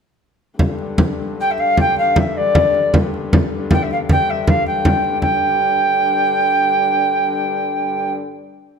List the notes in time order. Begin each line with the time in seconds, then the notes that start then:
0.59 G2 D3, frame drum
0.79 frame drum
0.98 frame drum
1.40 G5
1.50 E5
1.58 F5, frame drum
1.77 G5, frame drum
1.97 F5, frame drum
2.16 E5, frame drum
2.37 D5
2.55 frame drum
2.74 frame drum
2.94 frame drum
3.14 frame drum
3.33 frame drum
3.71 G5, frame drum
3.82 E5
3.91 F5, frame drum
4.09 G5, frame drum
4.29 E5
4.47 F5, frame drum
4.66 G5, frame drum
4.85 frame drum
5.04 frame drum
5.21 G2 D3 G5, frame drum